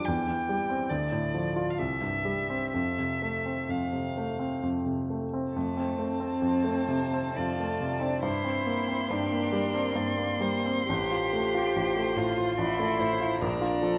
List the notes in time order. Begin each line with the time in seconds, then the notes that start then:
0.06 E2 G5
0.28 E3
0.49 G3
0.70 C4
0.90 D2 D5
1.12 A2
1.34 F3
1.56 F4
1.70 F5
1.78 C2 E5
2.01 G2
2.25 G3
2.50 C4
2.72 F2 E5
2.99 C3
3.22 A3
3.46 C4
3.69 F2 F5
3.93 C3
4.17 A3
4.39 C4
4.63 F2
4.86 C3
5.10 A3
5.34 C4
5.53 F2 A3 A5
5.77 C4
5.97 A3 C4
6.20 C4
6.42 F2 C5
6.64 A3
6.88 C3
7.13 C4
7.37 F2 F4 D5
7.60 A3
7.80 C3
8.01 C4 D4
8.22 G2 E4 C5 C6
8.44 C4
8.66 A#3
8.88 C4
9.10 G2 D4 G4
9.32 A#3
9.52 G3 A#4
9.74 C4
9.95 G2 A#3 D5
10.17 A#3
10.41 G3 C5
10.66 C4
10.88 A1 G4 C5
11.11 F4
11.33 A3
11.54 F4
11.76 A1
11.96 A3
12.16 A2 F4
12.38 F4
12.58 A1 E4 D5
12.79 A3
12.99 A2 C5
13.20 F4
13.41 A#1 D4 A#4 A#5
13.61 F4
13.81 F3 A4